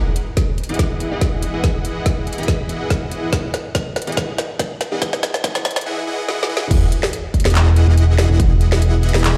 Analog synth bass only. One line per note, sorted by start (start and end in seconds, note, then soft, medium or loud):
0.69 1.09 E1 medium
1.11 1.51 E1 medium
1.54 2.36 E1 medium
2.38 2.67 E1 loud
2.69 3.31 E1 loud
3.32 3.45 E1 loud
4.07 4.15 E1 loud
4.17 4.30 E1 loud
4.92 5.00 E1 medium
5.02 5.14 E1 loud
5.44 5.57 E1 loud
6.71 6.83 E1 loud
7.45 7.85 E1 loud
7.88 8.28 E1 loud
8.30 9.12 E1 medium
9.14 9.37 E1 loud